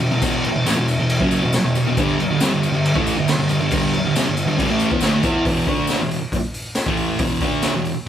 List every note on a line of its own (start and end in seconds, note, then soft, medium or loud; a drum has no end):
0.00 0.10 E2 medium
0.00 0.10 B2 medium
0.00 crash medium
0.11 0.21 E2 medium
0.11 0.22 B2 medium
0.11 tambourine soft
0.22 0.43 E2 loud
0.22 0.44 B2 medium
0.22 0.44 E3 loud
0.22 kick loud
0.22 tambourine medium
0.22 crash medium
0.44 muted distorted electric guitar stroke medium
0.44 tambourine soft
0.44 crash medium
0.56 0.66 E2 medium
0.56 0.65 B2 medium
0.66 0.76 A2 loud
0.66 0.76 E3 loud
0.66 snare loud
0.66 tambourine loud
0.66 crash medium
0.77 0.94 E2 medium
0.77 0.94 B2 medium
0.88 tambourine medium
0.88 crash medium
1.00 1.17 E2 medium
1.00 1.17 B2 medium
1.09 crash medium
1.20 1.42 F#2 loud
1.20 1.42 C#3 loud
1.20 1.43 F#3 medium
1.20 kick loud
1.20 tambourine soft
1.31 tambourine medium
1.31 crash medium
1.42 1.53 E2 medium
1.42 1.54 B2 medium
1.42 tambourine soft
1.53 muted distorted electric guitar stroke soft
1.53 snare loud
1.53 tambourine medium
1.53 crash medium
1.65 1.74 E2 medium
1.65 1.75 B2 medium
1.75 1.85 E2 medium
1.75 1.86 B2 medium
1.75 tambourine medium
1.75 crash medium
1.87 1.97 E2 medium
1.87 1.97 B2 medium
1.97 2.18 G2 medium
1.97 2.19 D3 loud
1.97 2.19 G3 loud
1.97 kick loud
1.97 tambourine medium
1.97 crash medium
2.09 tambourine soft
2.19 muted distorted electric guitar stroke medium
2.19 tambourine soft
2.19 crash medium
2.31 2.41 G2 medium
2.31 2.41 D3 medium
2.40 2.51 C3 medium
2.40 2.52 G3 loud
2.40 snare loud
2.40 tambourine loud
2.40 crash medium
2.52 2.69 G2 medium
2.52 2.69 D3 medium
2.63 tambourine medium
2.63 crash medium
2.74 2.91 G2 medium
2.74 2.91 D3 medium
2.74 tambourine soft
2.85 crash medium
2.94 3.16 A2 medium
2.94 3.16 E3 loud
2.94 3.17 A3 medium
2.94 kick loud
2.94 tambourine soft
3.07 tambourine medium
3.07 crash medium
3.17 3.26 G2 medium
3.17 3.28 D3 medium
3.17 tambourine soft
3.27 muted distorted electric guitar stroke medium
3.27 snare loud
3.27 tambourine medium
3.27 crash loud
3.39 3.49 G2 medium
3.39 3.49 D3 medium
3.49 3.59 G2 medium
3.49 3.59 D3 medium
3.49 tambourine medium
3.49 crash medium
3.60 3.70 G2 medium
3.60 3.71 D3 medium
3.71 3.93 G2 medium
3.71 3.93 D3 loud
3.71 3.93 G3 loud
3.71 kick loud
3.71 tambourine medium
3.71 crash loud
3.93 muted distorted electric guitar stroke medium
3.93 tambourine soft
3.93 crash medium
4.05 4.16 G2 medium
4.05 4.15 D3 medium
4.05 tambourine soft
4.15 4.26 C3 medium
4.15 4.26 G3 loud
4.15 snare loud
4.15 tambourine loud
4.15 crash medium
4.26 4.44 G2 medium
4.26 4.44 D3 medium
4.26 tambourine soft
4.37 tambourine medium
4.37 crash medium
4.47 4.59 G2 medium
4.47 4.58 D3 medium
4.58 4.68 C3 loud
4.58 4.69 G3 loud
4.58 kick loud
4.58 tambourine soft
4.58 crash medium
4.69 4.90 A2 medium
4.69 4.89 E3 medium
4.69 4.91 A3 medium
4.69 tambourine soft
4.80 tambourine medium
4.80 crash medium
4.91 5.01 E3 medium
4.91 5.02 B3 loud
4.91 kick loud
5.00 5.23 D3 medium
5.00 5.24 A3 medium
5.00 5.24 D4 medium
5.00 snare loud
5.00 tambourine loud
5.00 crash medium
5.23 5.45 E3 medium
5.23 5.45 B3 medium
5.23 5.45 E4 medium
5.23 kick loud
5.23 tambourine medium
5.23 crash medium
5.45 5.66 E2 loud
5.45 5.67 B2 medium
5.45 5.67 E3 loud
5.45 kick loud
5.45 open hi-hat medium
5.67 6.00 D3 medium
5.67 6.00 A3 loud
5.67 6.00 D4 loud
5.67 kick loud
5.67 open hi-hat soft
5.87 snare medium
5.87 open hi-hat medium
5.87 tambourine loud
6.00 6.18 E2 medium
6.00 6.18 B2 medium
6.11 open hi-hat medium
6.32 muted distorted electric guitar stroke medium
6.32 kick medium
6.32 open hi-hat medium
6.54 open hi-hat medium
6.75 snare loud
6.75 open hi-hat medium
6.75 tambourine medium
6.86 7.19 A2 medium
6.86 7.19 E3 medium
6.86 7.19 A3 medium
6.86 kick loud
6.97 open hi-hat medium
7.19 7.41 E2 medium
7.19 7.41 B2 medium
7.19 7.42 E3 loud
7.19 kick loud
7.19 open hi-hat medium
7.40 7.74 D3 medium
7.40 7.74 A3 loud
7.40 7.75 D4 loud
7.40 kick loud
7.40 open hi-hat medium
7.62 snare loud
7.62 open hi-hat medium
7.62 tambourine loud
7.74 7.92 E2 medium
7.74 7.92 B2 medium
7.85 open hi-hat medium